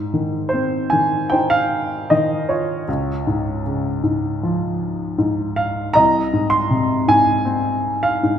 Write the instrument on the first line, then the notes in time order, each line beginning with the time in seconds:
grand piano
Already playing: G#2
0.14 D#3
0.49 C5
0.53 C4
0.90 D#3 G#5
1.30 D#4 C5 G5
1.50 F5
2.10 D#3 D#5
2.49 F4 C#5
2.88 C#2
3.27 G#2
3.66 C#3
4.03 G#2
4.43 F3
5.18 G#2
5.56 F5
5.93 C2 D#5 A#5
6.33 G#2
6.50 C6
6.70 C3
7.08 G#2 G#5
7.45 C4
8.03 F5
8.23 G#2